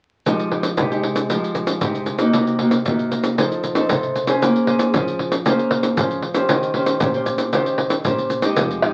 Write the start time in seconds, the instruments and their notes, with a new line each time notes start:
0.26 nylon-string guitar F3 G#3 D#4 G4, pandeiro, maracas, surdo
0.39 pandeiro, maracas
0.52 nylon-string guitar G#3 D#4 G4, pandeiro
0.63 pandeiro, maracas
0.77 nylon-string guitar C3 G#3 D#4 G4, pandeiro, maracas, surdo
0.91 nylon-string guitar G#3 D#4 G4, pandeiro, maracas
1.03 pandeiro
1.16 pandeiro, maracas
1.30 nylon-string guitar F3 G#3 D#4 G4, pandeiro, maracas, surdo
1.44 pandeiro, maracas
1.55 pandeiro, maracas
1.67 pandeiro, maracas
1.81 nylon-string guitar C3 G#3 D#4 G4, pandeiro, maracas, surdo
1.95 pandeiro, maracas
2.06 pandeiro, maracas
2.19 nylon-string guitar A#3 D#4 F#4, pandeiro, maracas
2.33 nylon-string guitar C3, pandeiro, maracas, surdo
2.47 pandeiro, maracas
2.59 nylon-string guitar A#3 D#4 F#4, pandeiro
2.71 pandeiro, maracas
2.86 nylon-string guitar C3 A#3 D#4 F#4, pandeiro, maracas, surdo
2.99 pandeiro, maracas
3.12 pandeiro, maracas
3.24 pandeiro, maracas
3.38 nylon-string guitar F3 D#4 A4 C5, pandeiro, maracas, surdo
3.52 pandeiro, maracas
3.64 pandeiro, maracas
3.75 nylon-string guitar D#4 A4 C5, pandeiro, maracas
3.89 nylon-string guitar C3 D#4 A4 C5, pandeiro, maracas, surdo
4.03 pandeiro, maracas
4.16 pandeiro, maracas
4.27 nylon-string guitar C#4 G#4 C5, pandeiro, maracas
4.42 nylon-string guitar A#3, pandeiro, maracas, surdo
4.56 pandeiro, maracas
4.67 nylon-string guitar C#4 G#4 C5, pandeiro
4.79 pandeiro, maracas
4.94 nylon-string guitar F3 C#4 G#4 C5, pandeiro, maracas, surdo
5.08 pandeiro, maracas
5.19 pandeiro
5.32 pandeiro, maracas
5.46 nylon-string guitar A#3 C#4 G#4 C5, pandeiro, maracas, surdo
5.59 pandeiro, maracas
5.71 pandeiro
5.83 pandeiro, maracas
5.97 nylon-string guitar F3 C#4 G#4 C5, pandeiro, maracas, surdo
6.11 pandeiro, maracas
6.22 pandeiro
6.34 nylon-string guitar C#4 G4 C5, pandeiro, maracas
6.49 nylon-string guitar D#3, pandeiro, maracas, surdo
6.63 pandeiro, maracas
6.74 nylon-string guitar C#4 G4 C5, pandeiro
6.86 pandeiro, maracas
7.00 nylon-string guitar A#2 C#4 G4 C5, pandeiro, maracas, surdo
7.14 nylon-string guitar C#4 G4 C5, pandeiro, maracas
7.26 pandeiro, maracas, surdo
7.38 pandeiro, maracas
7.53 nylon-string guitar D#3 C#4 G4 C5, pandeiro, maracas, surdo
7.66 pandeiro, maracas
7.78 pandeiro
7.90 pandeiro, maracas
8.05 nylon-string guitar A#2 C#4 G4 C5, pandeiro, maracas, surdo
8.18 pandeiro, maracas
8.30 pandeiro, maracas
8.42 nylon-string guitar G#3 D#4 G4, pandeiro, maracas
8.56 fingered electric bass F1, nylon-string guitar F3, pandeiro, maracas, surdo
8.71 pandeiro, maracas
8.82 nylon-string guitar G#3 D#4 G4, pandeiro, tamborim